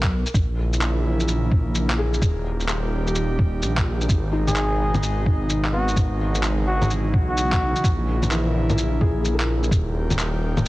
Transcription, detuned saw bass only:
Already playing: B1
0.34 A#1
1.52 A#1
1.67 A#1
2.22 D#1
3.39 D#1
3.62 A#1
3.86 A#1
4.09 G#1
5.97 G#1
7.14 B1
7.84 A#1
9.01 A#1
9.16 A#1
9.72 D#1

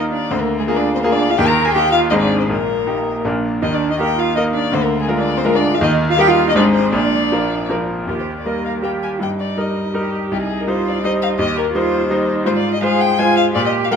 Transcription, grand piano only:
Already playing: D#2 D#3 A#3 D#4 A#4
0.31 D2 D3
0.67 A#3 F4 G#4
1.04 A#3 F4 G#4
1.38 D#2 D#3
1.75 A#3 D#4 G4
2.11 G#1 G#2 C4 D#4 G#4
2.49 A#1 A#2
2.87 A#3 D#4 G4
3.25 A#1 A#2 A#3 D4 A#4
3.62 D#2 D#3
3.99 A#3 D#4 A#4
4.37 A#3 D#4 A#4
4.72 D2 D3
5.08 G#3 F4 A#4
5.45 G#3 F4 A#4
5.81 D#2 D#3
6.18 G3 D#4 A#4
6.55 G#1 G#2 G#3 D#4 C5
6.93 A#1 A#2
7.32 F3 A#3 A#4
7.70 F3 A#3 A#4
8.07 D#2
8.45 G3 A#3 A#4
8.82 G3 A#3 A#4
9.20 G2
9.57 G3 D#4 A#4
9.94 G3 D#4 A#4
10.31 C2
10.67 G3 D#4 C5
11.04 G3 D#4 C5
11.39 D#2
11.75 G3 D#4 C5
12.10 G3 D#4 C5
12.46 G#2
12.82 G#3 F4 C5
13.19 G#3 F4 C5
13.55 A#2
13.91 G#3 F4 A#4

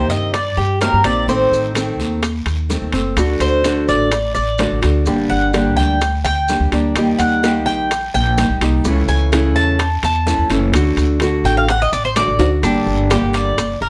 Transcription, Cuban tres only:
0.10 D#5
0.34 D5
0.57 G4
0.81 A#4
1.05 D5
1.29 C5
3.41 C5
3.89 D5
4.35 D5
5.30 F#5
5.77 G5
6.25 G5
7.18 F#5
7.66 G5
8.14 G5
9.09 G#5
9.56 A5
10.04 A5
11.45 G5
11.57 F5
11.70 F#5
11.82 D#5
11.93 D5
12.05 C5
12.17 D5
12.64 D4
13.11 G4
13.35 D5
13.82 A#4

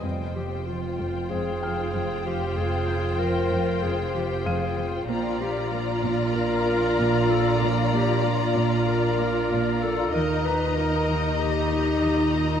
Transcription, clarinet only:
0.35 G4
0.67 F4
1.30 G#4
2.26 G4
2.57 G#4
3.19 A#4
3.83 G#4
4.14 G4
4.45 G#4
5.41 G4
5.72 F4
6.36 A#4
7.30 A4
7.93 G4
8.25 F4
8.88 A#4
9.83 A4
10.14 A#4
10.45 B4
10.76 A#4
11.39 G4
12.35 D#4

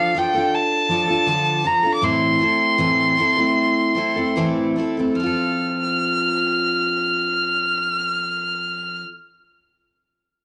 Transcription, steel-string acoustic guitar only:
Already playing: D3 F3 D4 F4 A4
0.15 F3 D4 F4 A4
0.34 D4 F4 A4
0.89 F3 D4 F4
0.93 A4
1.07 D4 F4 A4
1.27 D3 F3 D4 F4 A4
1.64 F3 D4 F4 A4
1.83 D4 F4 A4
2.01 A2 E3 A3 C4 E4 A4
2.39 A3 C4 E4
2.43 A4
2.78 A2 E3 A3 C4 E4 A4
3.17 A3 C4 E4 A4
3.36 A3 C4 E4 A4
3.95 A3 C4 E4 A4
4.16 A3 C4 E4 A4
4.36 A2 E3 A3 C4 E4 A4
4.76 A3 C4 E4 A4
4.97 A3 C4 E4 A4
5.15 F3
5.20 C4 F4
5.26 A4

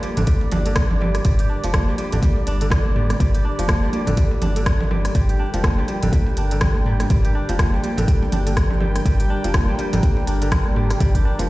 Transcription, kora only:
Already playing: D3 F3 D4 G4
0.03 G3
0.17 D3
0.27 G3
0.52 D4
0.66 D3
1.01 G3
1.25 G3
1.40 G4
1.49 D4
1.64 F3
1.88 G3
1.98 G3
2.13 D3
2.23 G3
2.47 D4
2.62 D3
2.96 G3
3.20 G3
3.34 G4
3.45 D4
3.59 F3
3.83 G3
3.93 G3
4.07 D3
4.17 G3
4.42 D4
4.56 D3
4.91 G3
5.15 G3
5.29 G4
5.39 D4
5.54 F3
5.78 G3
5.88 G3
6.03 D3
6.13 G3
6.37 D4
6.52 D3
6.86 G3
7.10 G3
7.25 G4
7.35 D4
7.49 F3
7.73 G3
7.84 G3
7.98 D3
8.08 G3
8.32 D4
8.47 D3
8.81 G3
9.06 G3
9.20 G4
9.30 D4
9.44 F3
9.69 G3
9.79 G3
9.93 D3
10.03 G3
10.27 D4
10.42 D3
10.76 G3
11.00 G3
11.15 G4
11.25 D4
11.39 F3

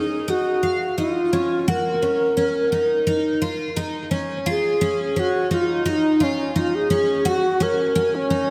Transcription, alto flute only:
Already playing: G#4
0.30 F#4
0.99 F4
1.69 A#4
4.50 G#4
5.19 F#4
5.54 F4
5.88 D#4
6.23 C#4
6.57 F4
6.75 G#4
7.28 F#4
7.62 A#4
8.15 C#4

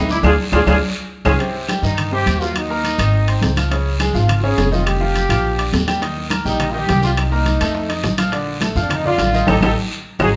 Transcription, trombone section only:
Already playing: D#4
0.12 E4
0.25 D4 F4 G#4
0.54 D4 F4 G#4
0.69 D4 F4 G#4
1.26 C#4 F4 G#4
1.83 D#4
2.13 G4
2.41 F4
2.57 D#4
4.16 F4
4.43 G#4
4.73 F4
4.86 G4
6.46 D#4
6.75 G4
7.04 F4
7.20 D#4
8.78 D4
8.93 D#4
9.07 F4
9.49 D#4 G4 A4
9.64 D#4 G4 A4
10.21 D#4 F#4 G#4

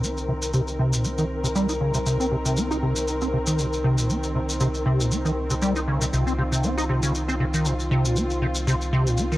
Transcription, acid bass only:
0.03 C4
0.28 C3
0.54 C3
0.79 C3
0.93 A#2
1.04 C4
1.18 D#3
1.44 C3
1.55 G3
1.69 D#4
1.81 C#3
1.94 C3
2.06 C3
2.20 C4
2.32 C3
2.45 C3
2.57 C4
2.71 D#4
2.83 C3
3.22 C4
3.33 C3
3.47 D#3
3.59 C3
3.84 C3
3.98 A#2
4.10 C4
4.35 C3
4.61 C3
4.86 C3
5.00 A#2
5.11 C4
5.25 D#3
5.50 C3
5.62 G3
5.76 D#4
5.88 C#3
6.01 C3
6.13 C3
6.27 C4
6.38 C3
6.52 C3
6.64 C4
6.78 D#4
6.89 C3
7.03 C#3
7.28 C4
7.40 C3
7.54 D#3
7.66 C3
7.91 C3
8.05 A#2
8.16 C4
8.42 C3
8.67 C3
8.93 C3
9.06 A#2
9.18 C4
9.32 D#3

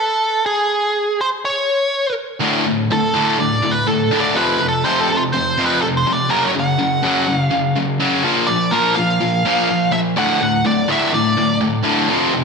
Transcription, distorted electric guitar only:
2.40 D2 A2 D3
2.66 D2 A2
2.91 D2 A2
3.14 D2 A2 D3
3.39 D2 A2
3.62 D2 A2
3.86 D2 A2
4.11 D2 A2 D3
4.35 F2 C3 F3
4.60 F2 C3
4.85 F2 C3 F3
5.09 F2 C3
5.33 F2 C3
5.57 F2 C3 F3
5.83 F2 C3
6.06 F2 C3
6.30 F#2 C#3 F#3
6.55 F#2 C#3
6.79 F#2 C#3
7.03 F#2 C#3 F#3
7.27 F#2 C#3
7.51 F#2 C#3
7.76 F#2 C#3
8.00 F#2 C#3 F#3
8.24 A#2 F3 A#3
8.49 A#2 F3
8.72 A#2 F3 A#3
8.97 A#2 F3
9.21 A#2 F3
9.45 A#2 F3 A#3
9.69 A#2 F3
9.91 A#2 F3
10.16 D2 A2 D3
10.41 D2 A2
10.65 D2 A2
10.88 D2 A2 D3
11.13 D2 A2
11.37 D2 A2
11.61 D2 A2
11.83 D2 A2 D3
12.09 F2 C3 F3
12.33 F2 C3

